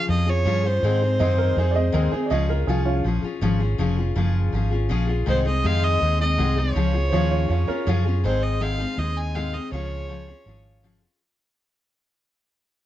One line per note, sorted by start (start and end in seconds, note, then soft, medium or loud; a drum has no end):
0.00 0.10 G#4 medium
0.07 0.45 F2 medium
0.07 0.27 F3 medium
0.07 0.27 C#4 medium
0.07 0.27 F4 medium
0.07 0.25 G#4 medium
0.07 0.31 D#5 medium
0.27 0.45 C#4 soft
0.27 0.46 F4 soft
0.27 0.45 G#4 medium
0.27 0.68 C#5 loud
0.45 0.82 G2 loud
0.45 0.64 C#3 medium
0.45 0.64 F3 medium
0.45 0.64 C#4 medium
0.45 0.64 F4 medium
0.45 0.62 G#4 medium
0.63 0.84 C#4 soft
0.63 0.83 F4 soft
0.63 0.82 G#4 medium
0.63 2.14 C5 medium
0.83 1.19 G#2 medium
0.83 1.01 G#2 medium
0.83 1.01 D#3 medium
0.83 1.02 G#3 medium
0.83 1.02 C4 medium
0.83 1.01 D#4 medium
0.83 1.00 G#4 medium
1.01 1.19 G#3 soft
1.01 1.19 C4 soft
1.01 1.20 D#4 medium
1.01 1.20 G#4 medium
1.19 1.56 F#2 loud
1.19 1.56 G#2 medium
1.19 1.57 D#3 medium
1.19 1.55 G#3 medium
1.19 1.56 C4 medium
1.19 1.57 D#4 medium
1.19 1.59 G#4 medium
1.19 1.38 D#5 medium
1.38 1.56 A#4 medium
1.56 1.93 F2 medium
1.56 1.75 G#3 medium
1.56 1.75 C4 medium
1.56 1.75 D#4 medium
1.56 1.76 G#4 medium
1.56 1.73 G#4 medium
1.71 1.93 G#4 medium
1.71 1.74 D5 medium
1.76 1.92 G#3 soft
1.76 1.93 C4 soft
1.76 1.93 D#4 medium
1.76 1.93 D#5 medium
1.92 2.11 D#2 loud
1.92 2.12 G#2 medium
1.92 2.12 D#3 medium
1.92 2.12 G#3 loud
1.92 2.13 C4 loud
1.92 2.12 D#4 loud
1.92 2.11 G#4 loud
1.92 2.12 A#4 medium
2.12 2.30 G#3 soft
2.12 2.31 C4 medium
2.12 2.31 D#4 medium
2.12 2.31 G#4 medium
2.12 2.30 G#4 medium
2.12 muted fingered electric bass stroke soft
2.26 2.29 D5 medium
2.30 2.67 C#2 medium
2.30 2.49 C#3 medium
2.30 2.49 F3 medium
2.30 2.50 C#4 medium
2.30 2.49 F4 medium
2.30 2.47 G#4 medium
2.30 2.49 D#5 medium
2.49 2.68 C#4 soft
2.49 2.68 F4 medium
2.49 2.68 G#4 medium
2.49 2.68 A#4 medium
2.67 3.04 C2 loud
2.67 3.03 F3 medium
2.67 3.05 C#4 medium
2.67 3.06 F4 medium
2.67 2.86 G#4 medium
2.67 3.07 G#4 medium
2.85 3.03 C#4 medium
2.85 3.04 F4 medium
3.04 3.22 A#1 medium
3.04 3.23 F3 medium
3.04 3.24 C#4 medium
3.04 3.23 F4 medium
3.04 3.21 G#4 medium
3.22 3.41 C#4 soft
3.22 3.42 F4 medium
3.22 3.42 G#4 medium
3.22 muted fingered electric bass stroke soft
3.41 3.78 G#1 loud
3.41 3.60 C#3 medium
3.41 3.61 F3 medium
3.41 3.61 C#4 loud
3.41 3.60 F4 medium
3.41 3.59 G#4 loud
3.60 3.78 C#4 medium
3.60 3.79 F4 medium
3.60 3.79 G#4 medium
3.78 4.15 F1 medium
3.78 3.97 C#3 medium
3.78 3.98 F3 medium
3.78 3.98 C#4 medium
3.78 3.97 F4 loud
3.78 3.95 G#4 medium
3.97 4.16 C#4 soft
3.97 4.16 F4 medium
3.97 4.16 G#4 medium
4.16 4.52 F#1 medium
4.16 4.53 C#3 medium
4.16 4.51 F3 medium
4.16 4.53 C#4 medium
4.16 4.54 F4 medium
4.16 4.56 G#4 medium
4.53 4.89 G#1 medium
4.53 4.72 F3 medium
4.53 4.72 C#4 medium
4.53 4.71 F4 medium
4.53 4.70 G#4 medium
4.71 4.89 C#4 soft
4.71 4.90 F4 medium
4.71 4.90 G#4 medium
4.89 5.26 A#1 loud
4.89 5.08 C#3 medium
4.89 5.09 F3 medium
4.89 5.09 C#4 loud
4.89 5.08 F4 loud
4.89 5.06 G#4 loud
5.07 5.28 C#4 soft
5.07 5.28 F4 medium
5.07 5.27 G#4 medium
5.26 5.63 C2 medium
5.26 5.45 G#2 medium
5.26 5.46 D#3 medium
5.26 5.46 G#3 medium
5.26 5.46 C4 medium
5.26 5.45 D#4 medium
5.26 5.43 G#4 medium
5.26 5.45 C5 loud
5.45 5.64 G#3 soft
5.45 5.64 C4 soft
5.45 5.64 D#4 medium
5.45 5.64 G#4 medium
5.45 5.68 D#5 medium
5.63 6.00 F2 medium
5.63 6.01 G#2 medium
5.63 6.01 D#3 medium
5.63 6.00 G#3 medium
5.63 6.00 C4 medium
5.63 6.02 D#4 medium
5.63 6.03 G#4 medium
5.63 5.85 F5 loud
5.84 6.20 D#5 loud
6.00 6.38 D#2 medium
6.00 6.19 G#3 medium
6.00 6.20 C4 medium
6.00 6.19 D#4 medium
6.00 6.18 G#4 medium
6.19 6.38 G#3 soft
6.19 6.38 C4 soft
6.19 6.38 D#4 medium
6.19 6.38 G#4 medium
6.19 6.59 D#5 loud
6.37 6.75 C2 medium
6.37 6.57 G#2 medium
6.37 6.57 D#3 medium
6.37 6.57 G#3 medium
6.37 6.57 C4 medium
6.37 6.56 D#4 medium
6.37 6.55 G#4 loud
6.56 6.75 G#3 soft
6.56 6.76 C4 soft
6.56 6.76 D#4 soft
6.56 6.75 G#4 soft
6.56 7.87 C#5 medium
6.75 7.12 C#2 medium
6.75 6.94 C#3 medium
6.75 6.94 F3 medium
6.75 6.94 C#4 medium
6.75 6.93 F4 medium
6.75 6.92 G#4 medium
6.93 7.12 C#4 soft
6.93 7.12 F4 soft
6.93 7.12 G#4 medium
7.08 7.49 C#3 medium
7.08 7.47 F3 medium
7.08 7.11 C5 medium
7.13 7.49 D#2 medium
7.13 7.49 C#4 medium
7.13 7.29 F4 medium
7.13 7.49 F4 medium
7.13 7.50 G#4 medium
7.13 7.30 C#5 medium
7.31 7.48 F4 medium
7.31 7.48 C#5 medium
7.48 7.67 F2 medium
7.48 7.68 F3 medium
7.48 7.68 C#4 medium
7.48 7.67 F4 medium
7.48 7.68 F4 medium
7.48 7.66 G#4 medium
7.48 7.68 C#5 medium
7.67 7.85 C#4 medium
7.67 7.87 C#4 soft
7.67 7.87 F4 medium
7.67 7.86 G#4 medium
7.67 7.86 A#4 medium
7.67 muted fingered electric bass stroke soft
7.87 8.23 F#2 medium
7.87 8.05 C#3 medium
7.87 8.06 F3 loud
7.87 8.06 C#4 medium
7.87 8.06 F4 loud
7.87 8.04 G#4 loud
7.87 8.14 C#5 medium
8.05 8.25 C#4 medium
8.05 8.25 F4 medium
8.05 8.24 G#4 medium
8.24 8.84 G#1 medium
8.24 8.59 G#2 medium
8.24 8.59 D#3 medium
8.24 8.60 G#3 medium
8.24 8.60 C4 medium
8.24 8.61 D#4 medium
8.24 8.62 G#4 medium
8.24 8.44 C5 medium
8.43 8.63 D#5 medium
8.60 8.79 G#2 medium
8.60 8.79 D#3 medium
8.60 8.79 G#3 medium
8.60 8.79 C4 medium
8.60 8.78 D#4 medium
8.60 8.77 G#4 medium
8.60 9.00 F5 medium
8.78 8.95 G#3 soft
8.78 8.97 C4 soft
8.78 8.98 D#4 soft
8.78 8.97 G#4 soft
8.96 9.58 D#2 medium
8.96 9.35 G#3 medium
8.96 9.35 C4 medium
8.96 9.35 D#4 medium
8.96 9.36 G#4 medium
8.96 9.19 D#5 medium
9.17 9.37 G#5 medium
9.34 9.53 G#2 medium
9.34 9.54 D#3 medium
9.34 9.54 G#3 medium
9.34 9.53 C4 medium
9.34 9.52 D#4 medium
9.34 9.51 G#4 medium
9.34 9.55 F5 medium
9.52 9.72 G#3 soft
9.52 9.73 C4 soft
9.52 9.72 D#4 soft
9.52 9.72 G#4 soft
9.52 9.72 D#5 medium
9.72 10.32 C#2 medium
9.72 10.07 C#3 medium
9.72 10.08 F3 medium
9.72 10.08 C#4 medium
9.72 10.09 F4 medium
9.72 10.10 G#4 medium
9.72 10.80 C#5 medium
10.08 10.27 C#3 medium
10.08 10.28 F3 medium
10.08 10.28 C#4 medium
10.08 10.28 F4 medium
10.08 10.26 G#4 medium
10.27 10.45 C#4 soft
10.27 10.46 F4 soft
10.27 10.46 G#4 medium
10.45 11.06 G#1 medium
10.45 10.83 F3 medium
10.45 10.83 C#4 medium
10.45 10.83 F4 medium
10.45 10.84 G#4 medium
10.83 11.02 C#3 medium
10.83 11.02 F3 medium
10.83 11.02 C#4 medium
10.83 11.02 F4 medium
10.83 11.00 G#4 medium
11.01 11.22 C#4 soft
11.01 11.21 F4 soft
11.01 11.20 G#4 soft